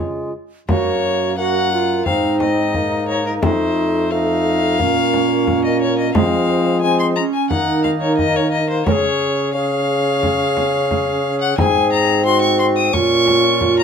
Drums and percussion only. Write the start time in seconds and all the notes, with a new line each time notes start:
0.69 frame drum
2.06 frame drum
2.40 frame drum
2.74 frame drum
3.43 frame drum
4.80 frame drum
5.14 frame drum
5.47 frame drum
6.15 frame drum
7.51 frame drum
7.84 frame drum
8.19 frame drum
8.86 frame drum
10.23 frame drum
10.57 frame drum
10.91 frame drum
11.58 frame drum
12.94 frame drum
13.27 frame drum
13.61 frame drum